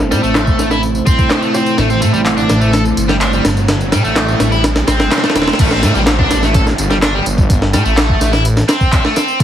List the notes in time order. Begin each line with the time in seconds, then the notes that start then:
Already playing: G1 A3 C4 E4 C5, riser
0.00 snare
0.11 A2 G3, snare, closed hi-hat, tambourine
0.23 A1 A3, tambourine
0.35 snare, clap, closed hi-hat, tambourine
0.47 kick, tambourine
0.59 A1, snare, closed hi-hat, tambourine
0.71 E4, snare, tambourine
0.83 closed hi-hat, tambourine
0.95 tambourine
1.06 C4, kick, closed hi-hat, tambourine
1.19 kick, tambourine
1.30 C4, snare, clap, closed hi-hat, tambourine
1.42 A3, tambourine
1.54 C4, snare, closed hi-hat, tambourine
1.66 tambourine
1.78 A1 A3, snare, closed hi-hat, tambourine
1.89 C4, tambourine
2.01 A2 A3, closed hi-hat, tambourine
2.13 A1 G3, tambourine
2.26 clap, closed hi-hat, tambourine
2.37 D4, tambourine
2.49 A1, snare, closed hi-hat, tambourine
2.61 A3, tambourine
2.73 A4, snare, closed hi-hat, tambourine
2.85 tambourine
2.97 G1, closed hi-hat, tambourine
3.09 G3, snare, tambourine
3.20 D4, clap, closed hi-hat, tambourine
3.33 G3, tambourine
3.45 G1, snare, closed hi-hat, tambourine
3.57 tambourine
3.68 snare, closed hi-hat, tambourine
3.81 tambourine
3.92 A2 G3, snare, closed hi-hat, tambourine
4.04 A1 A3, tambourine
4.16 snare, clap, closed hi-hat, tambourine
4.28 tambourine
4.40 A1, snare, closed hi-hat, tambourine
4.52 E4, tambourine
4.64 snare, closed hi-hat, tambourine
4.76 snare, tambourine
4.87 A1 C4, snare, closed hi-hat, tambourine
4.99 G1, snare, tambourine
5.11 C4, snare, clap, closed hi-hat, tambourine
5.18 snare
5.24 A3, snare, tambourine
5.30 snare
5.35 E1 C4, snare, closed hi-hat, tambourine
5.42 snare
5.47 snare, tambourine
5.53 snare
5.59 A1 A3, kick, closed hi-hat, crash, tambourine, downlifter
5.71 C4, snare
5.83 A2 A3, snare, closed hi-hat, tambourine
5.95 A1 G3, tambourine
6.07 snare, clap, closed hi-hat, tambourine
6.19 D4, kick
6.30 A1, snare, closed hi-hat, tambourine
6.43 A3, snare, tambourine
6.54 A4, kick, closed hi-hat, tambourine
6.67 snare, tambourine
6.78 G1, closed hi-hat, tambourine
6.90 G3, snare, tambourine
7.02 D4, snare, clap, closed hi-hat, tambourine
7.14 G3
7.26 G1, closed hi-hat, tambourine
7.38 kick, tambourine
7.50 kick, closed hi-hat, tambourine
7.62 snare
7.73 A2 G3, snare, closed hi-hat, tambourine
7.85 A1 A3, tambourine
7.97 snare, clap, closed hi-hat, tambourine
8.09 kick
8.21 A1, snare, closed hi-hat, tambourine
8.33 E4, snare, tambourine
8.45 closed hi-hat, tambourine
8.57 snare, tambourine
8.69 C4, snare, closed hi-hat, tambourine
8.81 kick, tambourine
8.92 C4, kick, clap, closed hi-hat, tambourine
9.04 A3, snare
9.16 C4, snare, closed hi-hat, tambourine
9.28 tambourine
9.40 A1 A3, kick, closed hi-hat, tambourine